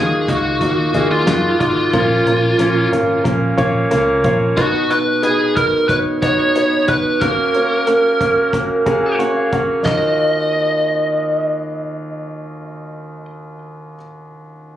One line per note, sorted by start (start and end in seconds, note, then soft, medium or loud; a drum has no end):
0.00 0.22 D#2 medium
0.00 0.24 D#3 medium
0.00 0.29 A#3 medium
0.00 0.29 D#4 medium
0.00 0.30 F4 medium
0.00 0.29 F#4 medium
0.00 0.30 G#4 medium
0.00 0.95 G#4 medium
0.28 0.55 C#2 medium
0.28 0.57 A#3 medium
0.28 0.57 D#4 medium
0.28 0.57 F4 medium
0.28 1.07 F#4 medium
0.28 0.57 F#4 medium
0.28 kick medium
0.28 closed hi-hat medium
0.61 0.88 D#2 medium
0.61 0.90 A#3 medium
0.61 0.90 D#4 medium
0.61 0.90 F4 medium
0.61 0.90 F#4 medium
0.61 kick medium
0.61 closed hi-hat medium
0.94 1.27 D#2 medium
0.94 1.23 A#3 medium
0.94 1.23 D#4 medium
0.94 1.23 F4 medium
0.94 1.23 G#4 medium
0.94 kick medium
0.94 closed hi-hat medium
1.11 1.59 F4 medium
1.27 1.54 F#2 medium
1.27 1.56 A#3 medium
1.27 1.56 D#4 medium
1.27 1.56 F4 medium
1.27 1.56 F#4 medium
1.27 snare loud
1.27 clap medium
1.27 closed hi-hat medium
1.60 1.88 G#1 medium
1.60 1.89 A#3 medium
1.60 1.89 D#4 medium
1.60 1.89 F4 medium
1.60 2.88 F4 medium
1.60 1.89 F#4 medium
1.60 kick medium
1.60 closed hi-hat medium
1.93 2.20 A#1 medium
1.93 2.89 A#2 medium
1.93 2.22 A#3 medium
1.93 2.22 C#4 medium
1.93 2.22 F4 medium
1.93 2.22 A#4 medium
1.93 kick medium
1.93 closed hi-hat medium
2.26 2.53 A#1 medium
2.26 2.55 A#3 medium
2.26 2.55 C#4 medium
2.26 2.55 F4 medium
2.26 2.55 A#4 medium
2.26 closed hi-hat medium
2.59 2.86 A#1 medium
2.59 2.88 A#3 medium
2.59 2.88 C#4 medium
2.59 2.88 F4 medium
2.59 2.88 A#4 medium
2.59 closed hi-hat medium
2.92 3.19 G#1 medium
2.92 3.21 A#3 medium
2.92 3.21 C#4 medium
2.92 3.21 F4 medium
2.92 3.21 A#4 medium
2.92 closed hi-hat medium
3.24 3.52 A#1 medium
3.24 3.53 A#3 medium
3.24 3.53 C#4 medium
3.24 3.53 F4 medium
3.24 3.53 A#4 medium
3.24 kick medium
3.24 closed hi-hat medium
3.57 3.85 A#1 medium
3.57 3.86 A#3 medium
3.57 3.86 C#4 medium
3.57 3.86 F4 medium
3.57 3.87 C#5 medium
3.57 kick medium
3.57 closed hi-hat medium
3.91 4.19 C#2 medium
3.91 4.20 A#3 medium
3.91 4.20 C#4 medium
3.91 4.20 F4 medium
3.91 4.20 A#4 loud
3.91 4.22 A#5 medium
3.91 closed hi-hat medium
4.24 4.52 A#1 medium
4.24 4.53 A#3 medium
4.24 4.53 C#4 medium
4.24 4.53 F4 medium
4.24 4.53 C#5 medium
4.24 4.55 F5 medium
4.24 kick medium
4.24 closed hi-hat medium
4.57 5.53 B2 medium
4.57 4.86 B3 medium
4.57 4.86 D#4 medium
4.57 4.91 F#4 medium
4.57 4.86 F#4 medium
4.57 4.86 B4 medium
4.57 kick medium
4.57 closed hi-hat medium
4.90 5.19 B3 medium
4.90 5.19 D#4 medium
4.90 5.19 F#4 soft
4.90 5.19 B4 medium
4.90 5.21 B4 medium
4.90 closed hi-hat soft
5.23 5.52 B3 medium
5.23 5.52 D#4 medium
5.23 5.52 F#4 medium
5.23 5.54 G#4 medium
5.23 5.52 B4 medium
5.23 closed hi-hat medium
5.56 5.85 B3 medium
5.56 5.85 D#4 medium
5.56 5.85 F#4 soft
5.56 5.88 A#4 medium
5.56 5.85 B4 medium
5.56 kick medium
5.56 closed hi-hat medium
5.88 6.18 B3 medium
5.88 6.18 D#4 medium
5.88 6.18 F#4 soft
5.88 5.97 B4 medium
5.88 6.18 C#5 medium
5.88 kick medium
5.88 closed hi-hat medium
6.22 6.51 B3 medium
6.22 6.51 D#4 medium
6.22 6.51 F#4 medium
6.22 6.84 C#5 medium
6.22 6.51 C#5 medium
6.22 kick medium
6.22 closed hi-hat medium
6.55 6.84 B3 medium
6.55 6.84 D#4 medium
6.55 6.84 F#4 medium
6.55 6.84 C#5 medium
6.55 closed hi-hat medium
6.88 7.17 B3 medium
6.88 7.17 D#4 medium
6.88 7.17 F#4 medium
6.88 7.19 B4 medium
6.88 7.17 B4 medium
6.88 kick medium
6.88 closed hi-hat medium
7.21 7.50 A#3 medium
7.21 7.50 C#4 medium
7.21 7.50 F#4 medium
7.21 9.15 A#4 medium
7.21 7.50 A#4 medium
7.21 kick medium
7.21 closed hi-hat medium
7.54 7.83 A#3 medium
7.54 7.83 C#4 medium
7.54 7.83 F#4 medium
7.54 7.83 C#5 medium
7.54 closed hi-hat soft
7.87 8.16 A#3 medium
7.87 8.16 C#4 medium
7.87 8.16 F#4 medium
7.87 8.16 A#4 medium
7.87 closed hi-hat medium
8.21 8.49 A#3 medium
8.21 8.49 C#4 medium
8.21 8.49 F#4 medium
8.21 8.49 A#4 medium
8.21 kick medium
8.21 closed hi-hat medium
8.53 8.82 A#3 medium
8.53 8.82 C#4 medium
8.53 8.82 F#4 medium
8.53 8.82 A#4 medium
8.53 kick medium
8.53 closed hi-hat medium
8.86 9.15 A#3 medium
8.86 9.15 C#4 medium
8.86 9.15 F#4 medium
8.86 9.15 G#4 medium
8.86 9.02 A#5 medium
8.86 kick medium
8.86 closed hi-hat medium
9.03 9.18 G#5 soft
9.19 9.48 A#3 medium
9.19 9.48 C#4 medium
9.19 9.48 F#4 medium
9.19 9.48 C#5 medium
9.19 9.35 F#5 medium
9.19 closed hi-hat medium
9.36 9.52 F5 medium
9.53 9.81 A#3 medium
9.53 9.81 C#4 medium
9.53 9.81 F#4 medium
9.53 9.81 A#4 medium
9.53 9.84 F#5 soft
9.53 kick medium
9.53 closed hi-hat soft
9.83 13.96 D#2 medium
9.83 13.94 D#4 medium
9.83 13.95 F4 medium
9.83 13.96 F#4 medium
9.83 13.26 D#5 medium
9.83 kick medium
9.83 snare medium
9.83 splash medium
9.87 13.97 A#4 medium